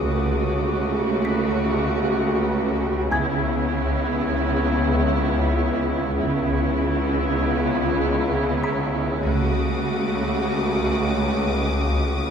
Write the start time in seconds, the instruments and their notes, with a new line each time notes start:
Already playing: violin section D6 D#6
0.04 double bass section C#2, synth drone C#2, cello section C#3, viola section A3 F#4
1.25 music box B6
3.11 double bass section C#2, synth drone C#2, cello section C#3, viola section B3 E4, music box G#5 G#6
6.17 double bass section C#2, synth drone C#2, cello section C#3, viola section B3 E4
8.64 music box B5 B6
9.24 synth drone C#2, double bass section C#2, cello section C#3, viola section A3 F#4, violin section D6 D#6